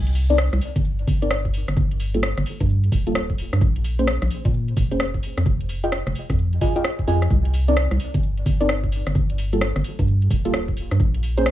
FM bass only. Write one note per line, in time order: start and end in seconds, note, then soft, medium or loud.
0.00 0.49 C2 loud
0.53 0.60 C2 medium
0.76 1.05 G1 medium
1.07 1.64 G1 medium
1.68 1.75 G1 medium
1.77 2.34 G1 loud
2.38 2.45 G1 medium
2.61 2.90 G2 medium
2.92 3.49 D1 medium
3.53 3.60 G2 medium
3.61 4.18 A#1 medium
4.22 4.29 A#1 medium
4.45 4.74 A#2 medium
4.77 5.21 F1 medium
5.37 5.45 F2 medium
5.46 6.03 F1 loud
6.07 6.14 F1 medium
6.30 6.59 F2 medium
7.08 7.28 F2 loud
7.31 7.87 C2 loud
7.91 7.98 C2 medium
8.14 8.44 G1 medium
8.46 9.03 G1 medium
9.07 9.14 G1 medium
9.15 9.72 G1 loud
9.76 9.83 G1 medium
9.99 10.28 G2 medium
10.31 10.87 D1 medium
10.91 10.98 G2 medium
11.00 11.51 A#1 loud